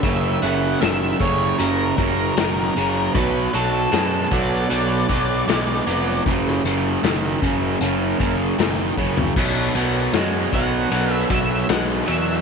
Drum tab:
CC |----------------|----------------|----------------|x---------------|
RD |----------------|----------------|----------------|--x-x-x-x-x-x-x-|
HH |x-x-x-x-x-x-x-x-|x-x-x-x-x-x-x-x-|x-x-x-x-x-x-x---|----------------|
SD |----o-------o---|----o-------o---|-o--o-------o---|----o-------o---|
FT |----------------|----------------|---------------o|----------------|
BD |o-----o---o-----|o-----o---o-----|o-----o---o---o-|o-----o---o-----|